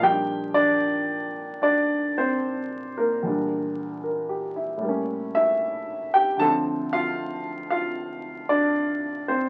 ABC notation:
X:1
M:4/4
L:1/8
Q:"Swing" 1/4=76
K:Bb
V:1 name="Grand piano"
[Gg] [Dd]3 [Dd] [Cc]2 [B,B]- | [B,B] z (3B G =E z [E=e]2 [Gg] | [Aa] [Ff]2 [Ff]2 [Dd]2 [Cc] |]
V:2 name="Grand piano" clef=bass
[B,,F,G,D]8 | [=E,,B,,G,D]4 [A,,G,B,^C]4 | [D,,D,F,C]8 |]